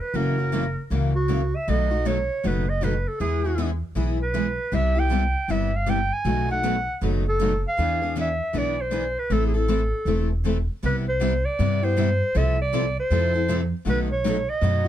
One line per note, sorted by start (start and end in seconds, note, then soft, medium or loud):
0.01 0.18 B4 medium
0.14 0.75 F#1 medium
0.14 0.35 C#3 medium
0.14 0.35 E3 medium
0.14 0.35 F#3 medium
0.14 0.36 A#3 medium
0.14 0.36 C#4 medium
0.14 0.35 E4 medium
0.14 0.36 F#4 medium
0.14 0.36 A#4 medium
0.14 0.92 A#4 medium
0.38 0.52 A#3 soft
0.38 0.52 C#4 soft
0.38 0.52 F#4 soft
0.52 0.63 C#3 medium
0.52 0.64 E3 medium
0.52 0.64 F#3 medium
0.52 0.64 A#3 medium
0.52 0.64 C#4 medium
0.52 0.64 E4 medium
0.52 0.64 F#4 medium
0.52 0.64 A#4 medium
0.90 1.52 C#2 medium
0.90 1.12 C#3 medium
0.90 1.12 E3 medium
0.90 1.12 F#3 medium
0.90 1.12 A#3 medium
0.90 1.12 C#4 medium
0.90 1.12 E4 medium
0.90 1.13 F#4 medium
0.90 1.12 A#4 medium
1.15 1.57 F#4 medium
1.28 1.40 C#3 medium
1.28 1.40 E3 medium
1.28 1.40 F#3 medium
1.28 1.40 A#3 medium
1.28 1.40 C#4 medium
1.28 1.40 E4 medium
1.28 1.40 F#4 medium
1.28 1.40 A#4 medium
1.56 1.71 E5 medium
1.68 2.29 B1 medium
1.68 1.89 B2 medium
1.68 1.89 D#3 medium
1.68 1.89 F#3 medium
1.68 1.89 A3 medium
1.68 1.89 B3 medium
1.68 1.89 D#4 medium
1.68 1.89 F#4 medium
1.68 1.89 A4 medium
1.68 2.09 D#5 medium
1.91 2.05 A3 soft
1.91 2.05 D#4 soft
1.91 2.05 F#4 soft
2.05 2.17 B2 medium
2.05 2.17 D#3 medium
2.05 2.17 F#3 medium
2.05 2.17 A3 medium
2.05 2.17 B3 medium
2.05 2.17 D#4 medium
2.05 2.17 F#4 medium
2.05 2.17 A4 medium
2.05 2.48 C#5 medium
2.43 3.05 F#1 medium
2.43 2.65 B2 medium
2.43 2.65 D#3 medium
2.43 2.65 F#3 medium
2.43 2.65 A3 medium
2.43 2.65 B3 medium
2.43 2.65 D#4 medium
2.43 2.66 F#4 medium
2.43 2.65 A4 medium
2.43 2.71 B4 medium
2.70 2.85 D#5 medium
2.81 2.93 B2 medium
2.81 2.93 D#3 medium
2.81 2.93 F#3 medium
2.81 2.93 A3 medium
2.81 2.94 B3 medium
2.81 2.93 D#4 medium
2.81 2.93 F#4 medium
2.81 2.94 A4 medium
2.81 3.10 B4 medium
3.08 3.20 A4 medium
3.20 3.81 E2 medium
3.20 3.41 E3 medium
3.20 3.41 G#3 medium
3.20 3.41 B3 medium
3.20 3.41 E4 medium
3.20 3.69 G#4 medium
3.20 3.42 G#4 medium
3.44 3.57 B3 soft
3.44 3.58 E4 soft
3.44 3.58 G#4 soft
3.58 3.69 E3 medium
3.58 3.69 G#3 medium
3.58 3.69 B3 medium
3.58 3.70 E4 medium
3.58 3.70 G#4 medium
3.95 4.57 B1 medium
3.95 4.17 E3 medium
3.95 4.17 G#3 medium
3.95 4.17 B3 medium
3.95 4.17 E4 medium
3.95 4.18 G#4 medium
4.23 4.76 B4 medium
4.34 4.45 E3 medium
4.34 4.46 G#3 medium
4.34 4.45 B3 medium
4.34 4.46 E4 medium
4.34 4.46 G#4 medium
4.72 5.33 C2 medium
4.72 4.94 C3 medium
4.72 4.94 G3 medium
4.72 4.94 B3 medium
4.72 4.94 E4 medium
4.72 4.94 G4 medium
4.72 5.01 E5 medium
4.95 5.10 B3 soft
4.95 5.10 E4 soft
4.95 5.10 G4 medium
4.99 5.52 G5 medium
5.11 5.22 C3 medium
5.11 5.22 G3 medium
5.11 5.23 B3 medium
5.11 5.23 E4 medium
5.11 5.23 G4 medium
5.48 6.10 G1 medium
5.48 5.70 C3 medium
5.48 5.71 G3 medium
5.48 5.71 B3 medium
5.48 5.71 E4 medium
5.48 5.71 G4 medium
5.48 5.78 E5 medium
5.76 5.91 F5 medium
5.86 5.98 C3 medium
5.86 5.98 G3 medium
5.86 5.98 B3 medium
5.86 5.98 E4 medium
5.86 5.98 G4 medium
5.86 6.14 G5 medium
6.13 6.50 G#5 medium
6.25 6.86 B1 medium
6.25 6.47 B2 medium
6.25 6.46 D#3 medium
6.25 6.46 F#3 medium
6.25 6.47 A3 medium
6.25 6.46 B3 medium
6.25 6.47 D#4 medium
6.25 6.47 F#4 medium
6.25 6.47 A4 medium
6.48 6.62 A3 soft
6.48 6.63 D#4 soft
6.48 6.63 F#4 soft
6.48 6.99 F#5 medium
6.63 6.75 B2 medium
6.63 6.75 D#3 medium
6.63 6.75 F#3 medium
6.63 6.75 A3 medium
6.63 6.75 B3 medium
6.63 6.75 D#4 medium
6.63 6.75 F#4 medium
6.63 6.75 A4 medium
7.01 7.63 F#1 medium
7.01 7.23 B2 medium
7.01 7.23 D#3 medium
7.01 7.24 F#3 medium
7.01 7.24 A3 medium
7.01 7.23 B3 medium
7.01 7.24 D#4 medium
7.01 7.24 F#4 medium
7.01 7.23 A4 medium
7.29 7.63 A4 medium
7.39 7.52 B2 medium
7.39 7.51 D#3 medium
7.39 7.52 F#3 medium
7.39 7.52 A3 medium
7.39 7.51 B3 medium
7.39 7.52 D#4 medium
7.39 7.52 F#4 medium
7.39 7.51 A4 medium
7.68 8.15 F5 medium
7.78 8.39 E2 medium
7.78 7.99 E3 medium
7.78 8.00 B3 medium
7.78 8.00 D4 medium
7.78 8.00 G#4 medium
7.78 8.00 B4 medium
8.02 8.15 B3 soft
8.02 8.16 D4 soft
8.02 8.16 G#4 soft
8.16 8.27 E3 medium
8.16 8.28 B3 medium
8.16 8.28 D4 medium
8.16 8.28 G#4 medium
8.16 8.28 B4 medium
8.21 8.59 E5 medium
8.53 9.15 B1 medium
8.53 8.75 E3 medium
8.53 8.75 B3 medium
8.53 8.76 D4 medium
8.53 8.76 G#4 medium
8.53 8.76 B4 medium
8.58 8.83 D5 medium
8.81 9.20 C5 medium
8.91 9.03 E3 medium
8.91 9.03 B3 medium
8.91 9.03 D4 medium
8.91 9.03 G#4 medium
8.91 9.04 B4 medium
9.19 9.34 B4 medium
9.30 9.91 A1 medium
9.30 9.52 E3 medium
9.30 9.52 A3 medium
9.30 9.52 C4 medium
9.30 9.52 E4 medium
9.30 9.52 A4 medium
9.30 9.46 A4 medium
9.47 9.58 G#4 soft
9.54 9.68 C4 soft
9.54 9.68 E4 soft
9.54 9.68 A4 soft
9.54 10.32 A4 medium
9.68 9.80 E3 medium
9.68 9.80 A3 medium
9.68 9.80 C4 medium
9.68 9.80 E4 medium
9.68 9.80 A4 medium
10.05 10.67 E1 medium
10.05 10.28 E3 medium
10.05 10.28 A3 medium
10.05 10.28 C4 medium
10.05 10.29 E4 medium
10.05 10.28 A4 medium
10.45 10.56 E3 medium
10.45 10.56 A3 medium
10.45 10.56 C4 medium
10.45 10.57 E4 medium
10.45 10.57 A4 medium
10.83 11.44 C2 medium
10.83 11.04 C3 medium
10.83 11.04 G3 medium
10.83 11.05 B3 medium
10.83 11.05 E4 medium
10.83 11.05 G4 medium
10.83 10.96 B4 medium
11.09 11.47 C5 medium
11.20 11.32 C3 medium
11.20 11.32 G3 medium
11.20 11.32 B3 medium
11.20 11.32 E4 medium
11.20 11.32 G4 medium
11.45 11.86 D5 medium
11.59 12.20 G2 medium
11.59 11.80 C3 medium
11.59 11.80 G3 medium
11.59 11.80 B3 medium
11.59 11.81 E4 medium
11.59 11.81 G4 medium
11.83 11.96 B3 soft
11.83 11.97 E4 soft
11.83 11.96 G4 medium
11.83 12.39 C5 loud
11.97 12.08 C3 medium
11.97 12.08 G3 medium
11.97 12.08 B3 medium
11.97 12.09 E4 medium
11.97 12.09 G4 medium
12.35 12.96 C2 medium
12.35 12.56 C3 medium
12.35 12.56 F3 medium
12.35 12.56 C4 medium
12.35 12.56 E4 medium
12.35 12.56 A4 medium
12.35 12.60 E5 loud
12.61 12.95 D5 medium
12.73 12.84 C3 medium
12.73 12.84 F3 medium
12.73 12.84 C4 medium
12.73 12.85 E4 medium
12.73 12.85 A4 medium
13.00 13.70 C5 medium
13.10 13.71 F2 medium
13.10 13.32 C3 medium
13.10 13.32 F3 medium
13.10 13.32 C4 medium
13.10 13.32 E4 medium
13.10 13.32 A4 medium
13.34 13.47 C4 soft
13.34 13.48 E4 soft
13.34 13.48 A4 medium
13.48 13.60 C3 medium
13.48 13.60 F3 medium
13.48 13.60 C4 medium
13.48 13.60 E4 medium
13.48 13.60 A4 medium
13.85 14.47 B1 medium
13.85 14.07 B2 medium
13.85 14.08 D#3 medium
13.85 14.07 F#3 medium
13.85 14.07 A3 medium
13.85 14.08 B3 medium
13.85 14.07 D#4 medium
13.85 14.08 F#4 medium
13.85 14.09 A4 medium
13.89 13.99 B4 medium
14.12 14.51 C#5 medium
14.24 14.36 B2 medium
14.24 14.37 D#3 medium
14.24 14.36 F#3 medium
14.24 14.36 A3 medium
14.24 14.37 B3 medium
14.24 14.36 D#4 medium
14.24 14.36 F#4 medium
14.24 14.37 A4 medium
14.50 14.87 D#5 medium
14.61 14.88 F#2 medium
14.61 14.83 B2 medium
14.61 14.84 D#3 medium
14.61 14.83 F#3 medium
14.61 14.84 A3 medium
14.61 14.84 B3 medium
14.61 14.84 D#4 medium
14.61 14.84 F#4 medium
14.61 14.84 A4 medium
14.85 14.88 F#4 medium